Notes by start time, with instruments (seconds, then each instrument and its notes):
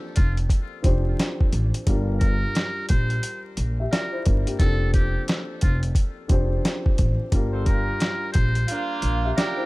Already playing: grand piano F3 A#3 C4 D4 G4 A4
0.16 upright bass F1, muted trumpet F4, kick, closed hi-hat
0.37 closed hi-hat
0.49 kick, closed hi-hat
0.82 upright bass F1, grand piano F3 C4 D4 G4 C5, kick, closed hi-hat
1.20 snare, closed hi-hat
1.41 kick
1.53 upright bass A1, closed hi-hat
1.74 closed hi-hat
1.87 upright bass G1, grand piano G3 D4 F4 G4 A#4, kick, closed hi-hat
2.20 muted trumpet A#4, kick, closed hi-hat
2.55 snare, closed hi-hat
2.89 upright bass A#1, muted trumpet C5, kick, closed hi-hat
3.10 closed hi-hat
3.23 closed hi-hat
3.57 upright bass A#1, closed hi-hat
3.80 grand piano G4 E5
3.92 grand piano F4 D5, muted trumpet A#4, snare, closed hi-hat
4.12 grand piano E4 C5
4.25 upright bass G1, grand piano D4 A#4, kick, closed hi-hat
4.47 grand piano A#3 G4, closed hi-hat
4.59 upright bass F1, grand piano F3 C4 D4 G4 A4, muted trumpet A4, kick, closed hi-hat
4.94 muted trumpet G4, kick, closed hi-hat
5.28 snare, closed hi-hat
5.61 upright bass F1, muted trumpet F4, kick, closed hi-hat
5.83 closed hi-hat
5.95 kick, closed hi-hat
6.28 upright bass F1, grand piano F3 C4 D4 G4 C5, kick, closed hi-hat
6.65 snare, closed hi-hat
6.86 kick
6.98 upright bass A1, kick, closed hi-hat
7.32 upright bass G1, grand piano G3 D4 F4 G4 A#4, kick, closed hi-hat
7.53 horn section F4 A4 C5
7.66 horn section F4 G4 A#4, muted trumpet A#4, kick, closed hi-hat
8.00 snare, closed hi-hat
8.33 upright bass A#1, muted trumpet C5, kick, closed hi-hat
8.55 closed hi-hat
8.68 horn section A#3 D4 F4, closed hi-hat
9.02 upright bass A#1, closed hi-hat
9.25 grand piano G4 E5
9.36 horn section A#3 D4 G4, grand piano F4 D5, muted trumpet A#4, snare, closed hi-hat
9.57 grand piano E4 C5